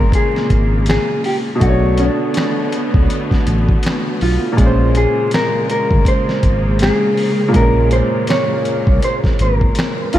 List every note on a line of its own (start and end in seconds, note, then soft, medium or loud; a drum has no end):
0.00 0.11 G1 medium
0.00 1.55 A#2 medium
0.00 1.59 C#3 medium
0.00 1.57 G#3 medium
0.00 1.59 G#3 medium
0.00 1.59 A#3 medium
0.00 1.59 C#4 medium
0.00 0.12 A#4 medium
0.00 1.61 C5 medium
0.12 0.84 G#4 medium
0.12 kick medium
0.12 closed hi-hat medium
0.36 snare soft
0.50 0.99 G#1 loud
0.50 kick medium
0.50 closed hi-hat medium
0.86 1.23 G#4 medium
0.86 snare loud
0.86 closed hi-hat medium
0.91 finger snap medium
1.24 1.36 G4 medium
1.24 open hi-hat medium
1.55 4.51 B2 medium
1.60 2.10 B1 loud
1.60 4.55 D3 medium
1.60 4.53 A3 medium
1.60 4.55 A3 medium
1.60 4.55 B3 medium
1.60 2.00 F#4 medium
1.60 kick loud
1.60 closed hi-hat medium
1.64 4.55 D4 medium
1.69 4.58 C#5 medium
1.97 4.17 D4 medium
1.97 closed hi-hat medium
2.34 snare loud
2.34 closed hi-hat medium
2.38 finger snap medium
2.72 closed hi-hat medium
2.94 3.08 C#2 medium
2.94 kick loud
3.10 closed hi-hat medium
3.31 kick medium
3.31 snare soft
3.47 3.78 A1 medium
3.47 closed hi-hat medium
3.69 kick medium
3.83 snare loud
3.83 closed hi-hat medium
3.88 finger snap medium
4.21 4.38 B1 medium
4.21 4.92 F4 medium
4.21 open hi-hat medium
4.53 7.47 A#2 medium
4.57 5.06 A#1 loud
4.57 10.19 C#3 medium
4.57 7.50 G#3 medium
4.57 10.19 G#3 medium
4.57 10.19 A#3 medium
4.57 kick loud
4.57 closed hi-hat medium
4.61 7.52 C#4 medium
4.66 7.54 C5 medium
4.95 5.34 G#4 medium
4.95 closed hi-hat medium
5.31 5.70 A#4 loud
5.31 snare loud
5.31 closed hi-hat medium
5.35 finger snap medium
5.70 6.08 A#4 loud
5.70 closed hi-hat medium
5.91 6.04 G1 medium
5.91 kick loud
6.05 6.77 C5 loud
6.05 kick medium
6.05 closed hi-hat medium
6.29 snare soft
6.43 6.91 G#1 medium
6.43 kick medium
6.43 closed hi-hat medium
6.79 7.51 G#4 loud
6.79 snare loud
6.79 closed hi-hat medium
6.84 finger snap medium
7.17 open hi-hat medium
7.48 10.19 A#2 medium
7.53 8.02 A#1 loud
7.53 10.14 G#3 medium
7.53 7.90 A#4 loud
7.53 kick loud
7.53 closed hi-hat medium
7.57 10.19 C#4 medium
7.62 10.19 A#4 medium
7.91 8.30 C5 loud
7.91 closed hi-hat medium
8.27 8.99 C#5 loud
8.27 snare loud
8.27 closed hi-hat medium
8.32 finger snap medium
8.65 closed hi-hat medium
8.87 9.00 C2 medium
8.87 kick loud
9.02 9.14 C5 loud
9.02 closed hi-hat medium
9.24 kick medium
9.24 snare soft
9.39 9.71 G#1 medium
9.39 10.11 A#4 loud
9.39 closed hi-hat medium
9.61 kick medium
9.75 snare loud
9.75 closed hi-hat medium
9.80 finger snap medium
10.13 10.19 A#1 medium
10.13 10.19 G#3 medium
10.13 10.19 F4 loud
10.13 closed hi-hat medium